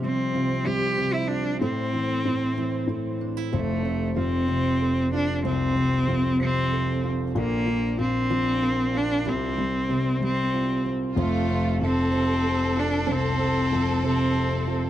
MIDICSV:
0, 0, Header, 1, 5, 480
1, 0, Start_track
1, 0, Key_signature, -1, "major"
1, 0, Tempo, 636267
1, 1224, Time_signature, 6, 3, 24, 8
1, 11240, End_track
2, 0, Start_track
2, 0, Title_t, "Violin section"
2, 0, Program_c, 0, 48
2, 8423, Note_on_c, 0, 65, 89
2, 8873, Note_off_c, 0, 65, 0
2, 8906, Note_on_c, 0, 69, 96
2, 11240, Note_off_c, 0, 69, 0
2, 11240, End_track
3, 0, Start_track
3, 0, Title_t, "Steel-string acoustic guitar"
3, 0, Program_c, 1, 25
3, 0, Note_on_c, 1, 53, 83
3, 0, Note_on_c, 1, 67, 63
3, 29, Note_on_c, 1, 60, 53
3, 264, Note_on_c, 1, 65, 55
3, 501, Note_off_c, 1, 60, 0
3, 504, Note_on_c, 1, 60, 71
3, 736, Note_off_c, 1, 67, 0
3, 745, Note_on_c, 1, 67, 52
3, 969, Note_off_c, 1, 65, 0
3, 978, Note_on_c, 1, 65, 55
3, 1217, Note_off_c, 1, 60, 0
3, 1220, Note_off_c, 1, 67, 0
3, 1220, Note_on_c, 1, 60, 78
3, 1223, Note_on_c, 1, 69, 65
3, 1229, Note_off_c, 1, 53, 0
3, 1269, Note_off_c, 1, 65, 0
3, 1455, Note_off_c, 1, 60, 0
3, 1458, Note_on_c, 1, 60, 54
3, 1703, Note_on_c, 1, 64, 56
3, 1940, Note_off_c, 1, 60, 0
3, 1943, Note_on_c, 1, 60, 66
3, 2178, Note_off_c, 1, 69, 0
3, 2181, Note_on_c, 1, 69, 58
3, 2418, Note_off_c, 1, 64, 0
3, 2421, Note_on_c, 1, 62, 60
3, 2541, Note_off_c, 1, 62, 0
3, 2541, Note_on_c, 1, 64, 52
3, 2657, Note_off_c, 1, 60, 0
3, 2660, Note_on_c, 1, 60, 79
3, 2711, Note_off_c, 1, 64, 0
3, 2895, Note_off_c, 1, 60, 0
3, 2904, Note_on_c, 1, 60, 54
3, 3140, Note_on_c, 1, 65, 53
3, 3369, Note_off_c, 1, 60, 0
3, 3378, Note_on_c, 1, 60, 64
3, 3620, Note_off_c, 1, 69, 0
3, 3623, Note_on_c, 1, 69, 49
3, 3867, Note_off_c, 1, 65, 0
3, 3870, Note_on_c, 1, 65, 58
3, 4101, Note_off_c, 1, 60, 0
3, 4110, Note_on_c, 1, 60, 82
3, 4344, Note_off_c, 1, 60, 0
3, 4353, Note_on_c, 1, 60, 50
3, 4589, Note_off_c, 1, 65, 0
3, 4592, Note_on_c, 1, 65, 53
3, 4824, Note_off_c, 1, 60, 0
3, 4833, Note_on_c, 1, 60, 65
3, 5056, Note_off_c, 1, 69, 0
3, 5065, Note_on_c, 1, 69, 53
3, 5306, Note_off_c, 1, 65, 0
3, 5309, Note_on_c, 1, 65, 58
3, 5546, Note_off_c, 1, 60, 0
3, 5549, Note_on_c, 1, 62, 82
3, 5593, Note_off_c, 1, 69, 0
3, 5782, Note_off_c, 1, 62, 0
3, 5791, Note_on_c, 1, 62, 57
3, 6024, Note_off_c, 1, 65, 0
3, 6027, Note_on_c, 1, 65, 53
3, 6256, Note_off_c, 1, 62, 0
3, 6266, Note_on_c, 1, 62, 70
3, 6505, Note_on_c, 1, 70, 61
3, 6741, Note_off_c, 1, 65, 0
3, 6744, Note_on_c, 1, 65, 60
3, 6980, Note_on_c, 1, 55, 88
3, 7033, Note_off_c, 1, 62, 0
3, 7033, Note_off_c, 1, 70, 0
3, 7215, Note_off_c, 1, 55, 0
3, 7224, Note_on_c, 1, 55, 56
3, 7247, Note_off_c, 1, 65, 0
3, 7472, Note_on_c, 1, 60, 55
3, 7704, Note_off_c, 1, 55, 0
3, 7714, Note_on_c, 1, 55, 65
3, 7949, Note_on_c, 1, 65, 54
3, 8188, Note_off_c, 1, 60, 0
3, 8191, Note_on_c, 1, 60, 48
3, 8425, Note_off_c, 1, 60, 0
3, 8428, Note_on_c, 1, 60, 80
3, 8477, Note_off_c, 1, 55, 0
3, 8666, Note_off_c, 1, 60, 0
3, 8675, Note_on_c, 1, 60, 56
3, 8907, Note_off_c, 1, 65, 0
3, 8910, Note_on_c, 1, 65, 51
3, 9134, Note_off_c, 1, 60, 0
3, 9143, Note_on_c, 1, 60, 71
3, 9383, Note_on_c, 1, 69, 59
3, 9621, Note_off_c, 1, 65, 0
3, 9624, Note_on_c, 1, 65, 58
3, 9849, Note_off_c, 1, 60, 0
3, 9858, Note_on_c, 1, 60, 81
3, 10094, Note_off_c, 1, 60, 0
3, 10103, Note_on_c, 1, 60, 62
3, 10342, Note_off_c, 1, 65, 0
3, 10345, Note_on_c, 1, 65, 53
3, 10579, Note_off_c, 1, 60, 0
3, 10588, Note_on_c, 1, 60, 68
3, 10817, Note_off_c, 1, 69, 0
3, 10826, Note_on_c, 1, 69, 55
3, 11062, Note_off_c, 1, 65, 0
3, 11065, Note_on_c, 1, 65, 58
3, 11240, Note_off_c, 1, 60, 0
3, 11240, Note_off_c, 1, 65, 0
3, 11240, Note_off_c, 1, 69, 0
3, 11240, End_track
4, 0, Start_track
4, 0, Title_t, "Cello"
4, 0, Program_c, 2, 42
4, 36, Note_on_c, 2, 60, 92
4, 499, Note_on_c, 2, 67, 108
4, 510, Note_off_c, 2, 60, 0
4, 852, Note_on_c, 2, 64, 94
4, 864, Note_off_c, 2, 67, 0
4, 964, Note_on_c, 2, 62, 92
4, 976, Note_off_c, 2, 64, 0
4, 1214, Note_off_c, 2, 62, 0
4, 1218, Note_on_c, 2, 60, 96
4, 2391, Note_off_c, 2, 60, 0
4, 2678, Note_on_c, 2, 57, 81
4, 3121, Note_off_c, 2, 57, 0
4, 3157, Note_on_c, 2, 60, 92
4, 3841, Note_off_c, 2, 60, 0
4, 3878, Note_on_c, 2, 62, 97
4, 4095, Note_off_c, 2, 62, 0
4, 4116, Note_on_c, 2, 60, 104
4, 4800, Note_off_c, 2, 60, 0
4, 4847, Note_on_c, 2, 60, 106
4, 5346, Note_off_c, 2, 60, 0
4, 5569, Note_on_c, 2, 58, 94
4, 6007, Note_off_c, 2, 58, 0
4, 6043, Note_on_c, 2, 60, 104
4, 6766, Note_on_c, 2, 62, 103
4, 6778, Note_off_c, 2, 60, 0
4, 7006, Note_on_c, 2, 60, 92
4, 7017, Note_off_c, 2, 62, 0
4, 7715, Note_off_c, 2, 60, 0
4, 7724, Note_on_c, 2, 60, 101
4, 8224, Note_off_c, 2, 60, 0
4, 8447, Note_on_c, 2, 57, 85
4, 8885, Note_off_c, 2, 57, 0
4, 8940, Note_on_c, 2, 60, 108
4, 9650, Note_on_c, 2, 62, 91
4, 9662, Note_off_c, 2, 60, 0
4, 9897, Note_on_c, 2, 60, 100
4, 9908, Note_off_c, 2, 62, 0
4, 10600, Note_off_c, 2, 60, 0
4, 10618, Note_on_c, 2, 60, 96
4, 11110, Note_off_c, 2, 60, 0
4, 11240, End_track
5, 0, Start_track
5, 0, Title_t, "Grand piano"
5, 0, Program_c, 3, 0
5, 0, Control_c, 3, 64, 127
5, 0, Note_on_c, 3, 48, 62
5, 14, Note_on_c, 3, 55, 43
5, 245, Note_off_c, 3, 48, 0
5, 256, Note_on_c, 3, 48, 55
5, 485, Note_off_c, 3, 55, 0
5, 496, Note_on_c, 3, 55, 55
5, 728, Note_off_c, 3, 48, 0
5, 739, Note_on_c, 3, 48, 47
5, 1198, Note_off_c, 3, 55, 0
5, 1207, Note_off_c, 3, 48, 0
5, 1216, Note_on_c, 3, 45, 67
5, 1234, Control_c, 3, 64, 0
5, 1366, Control_c, 3, 64, 127
5, 1458, Note_on_c, 3, 52, 55
5, 1688, Note_off_c, 3, 45, 0
5, 1699, Note_on_c, 3, 45, 57
5, 1924, Note_off_c, 3, 52, 0
5, 1935, Note_on_c, 3, 52, 55
5, 2157, Note_off_c, 3, 45, 0
5, 2168, Note_on_c, 3, 45, 54
5, 2638, Note_off_c, 3, 52, 0
5, 2642, Note_off_c, 3, 45, 0
5, 2660, Note_on_c, 3, 41, 68
5, 2663, Note_on_c, 3, 29, 59
5, 2676, Control_c, 3, 64, 0
5, 2808, Control_c, 3, 64, 127
5, 2903, Note_on_c, 3, 48, 46
5, 3127, Note_off_c, 3, 41, 0
5, 3139, Note_on_c, 3, 41, 50
5, 3370, Note_off_c, 3, 48, 0
5, 3381, Note_on_c, 3, 48, 54
5, 4073, Note_off_c, 3, 41, 0
5, 4074, Note_off_c, 3, 29, 0
5, 4099, Note_on_c, 3, 36, 68
5, 4314, Note_off_c, 3, 48, 0
5, 4339, Note_on_c, 3, 48, 53
5, 4581, Note_on_c, 3, 41, 57
5, 4813, Note_off_c, 3, 48, 0
5, 4825, Note_on_c, 3, 48, 59
5, 5512, Note_off_c, 3, 36, 0
5, 5514, Note_off_c, 3, 41, 0
5, 5523, Note_off_c, 3, 48, 0
5, 5544, Note_on_c, 3, 46, 74
5, 5545, Note_on_c, 3, 34, 70
5, 5556, Control_c, 3, 64, 0
5, 5673, Control_c, 3, 64, 127
5, 5779, Note_on_c, 3, 53, 52
5, 6012, Note_off_c, 3, 46, 0
5, 6023, Note_on_c, 3, 46, 55
5, 6251, Note_off_c, 3, 53, 0
5, 6262, Note_on_c, 3, 53, 59
5, 6955, Note_off_c, 3, 34, 0
5, 6955, Note_off_c, 3, 46, 0
5, 6962, Note_off_c, 3, 53, 0
5, 6983, Note_on_c, 3, 36, 63
5, 6984, Note_on_c, 3, 48, 65
5, 6993, Control_c, 3, 64, 0
5, 7138, Control_c, 3, 64, 127
5, 7230, Note_on_c, 3, 55, 49
5, 7449, Note_off_c, 3, 48, 0
5, 7460, Note_on_c, 3, 48, 56
5, 7684, Note_off_c, 3, 55, 0
5, 7695, Note_on_c, 3, 55, 55
5, 8393, Note_off_c, 3, 48, 0
5, 8394, Note_off_c, 3, 36, 0
5, 8398, Note_off_c, 3, 55, 0
5, 8421, Note_on_c, 3, 29, 65
5, 8421, Note_on_c, 3, 41, 72
5, 8434, Control_c, 3, 64, 0
5, 8546, Control_c, 3, 64, 127
5, 8663, Note_on_c, 3, 48, 50
5, 8888, Note_off_c, 3, 41, 0
5, 8899, Note_on_c, 3, 41, 57
5, 9137, Note_off_c, 3, 48, 0
5, 9148, Note_on_c, 3, 48, 58
5, 9832, Note_off_c, 3, 29, 0
5, 9832, Note_off_c, 3, 41, 0
5, 9869, Note_on_c, 3, 36, 62
5, 10077, Note_off_c, 3, 48, 0
5, 10113, Note_on_c, 3, 48, 48
5, 10355, Note_on_c, 3, 41, 54
5, 10583, Note_off_c, 3, 48, 0
5, 10594, Note_on_c, 3, 48, 58
5, 11240, Note_off_c, 3, 36, 0
5, 11240, Note_off_c, 3, 41, 0
5, 11240, Note_off_c, 3, 48, 0
5, 11240, End_track
0, 0, End_of_file